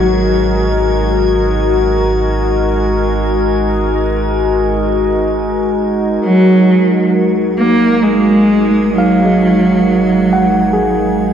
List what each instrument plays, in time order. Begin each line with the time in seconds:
Already playing: sub bass G#1, cello F#3, ambient pad G#3 D#4 F#4 A#4 D#5, synth texture G#6
6.24 sub bass G#1, cello F#3, synth drone G#3, synth texture G#6
7.58 cello A#3
8.04 cello G#3
8.94 cello F#3
8.98 tine electric piano F5
9.25 tine electric piano G#3
10.33 tine electric piano F#5
10.73 tine electric piano G#4